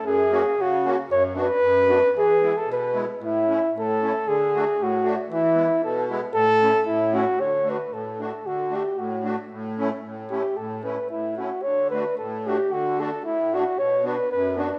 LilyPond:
<<
  \new Staff \with { instrumentName = "Flugelhorn" } { \time 2/4 \key a \major \tempo 4 = 114 gis'4 fis'8. r16 | cis''8 b'4. | gis'8. a'16 b'8. r16 | e'4 a'4 |
gis'4 fis'8. r16 | e'4 a'8 r8 | a'4 e'8 fis'8 | \key d \major cis''8 b'8 a'8 a'8 |
fis'8 g'8 fis'8. r16 | r4. g'8 | a'8 b'8 e'8 fis'8 | cis''8 b'8 a'8 g'8 |
fis'8 a'8 e'8 fis'8 | cis''8 b'8 b'8 d'8 | }
  \new Staff \with { instrumentName = "Accordion" } { \time 2/4 \key a \major r8 <ais cis' fis'>8 r8 <ais cis' fis'>8 | r8 <b d' fis'>8 r8 <b d' fis'>8 | r8 <gis b e'>8 r8 <gis b e'>8 | r8 <a cis' e'>8 r8 <a cis' e'>8 |
r8 <a d' fis'>8 r8 <a d' fis'>8 | r8 <gis b e'>8 r8 <gis b e'>8 | r8 <a cis' e'>8 r8 <a cis' e'>8 | \key d \major r8 <a d' fis'>8 r8 <a d' fis'>8 |
r8 <a d' fis'>8 r8 <a d' fis'>8 | r8 <a cis' e'>8 r8 <a cis' e'>8 | r8 <a cis' e'>8 r8 <a cis' e'>8 | r8 <a d' fis'>8 r8 <a d' fis'>8 |
r8 <a d' fis'>8 r8 <a d' fis'>8 | r8 <b d' fis'>8 r8 <b d' fis'>8 | }
  \new Staff \with { instrumentName = "Accordion" } { \clef bass \time 2/4 \key a \major fis,4 cis4 | fis,4 fis,4 | e4 b,4 | a,4 a,4 |
d4 a,4 | e4 b,4 | a,4 a,4 | \key d \major d4 a,4 |
d4 a,4 | a,4 a,4 | a,4 a,4 | d4 a,4 |
d4 a,4 | b,4 fis,4 | }
>>